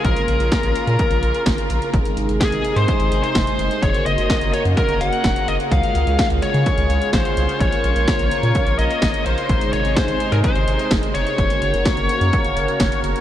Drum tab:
HH |xxxxxxxxxxxxxxxx|xxxxxxxxxxxxxxxx|xxxxxxxxxxxxxxxx|xxxxxxxxxxxxxxxx|
SD |----o-------o---|----o-------o---|----o-------o---|----o-------o---|
BD |o---o---o---o---|o---o---o---o---|o---o---o---o---|o---o---o---o---|

HH |xxxxxxxxxxxxxxxx|xxxxxxxxxxxxxxxx|xxxxxxxxxxxxxxxx|
SD |----o-------o---|----o-------o---|----o-------o---|
BD |o---o---o---o---|o---o---o---o---|o---o---o---o---|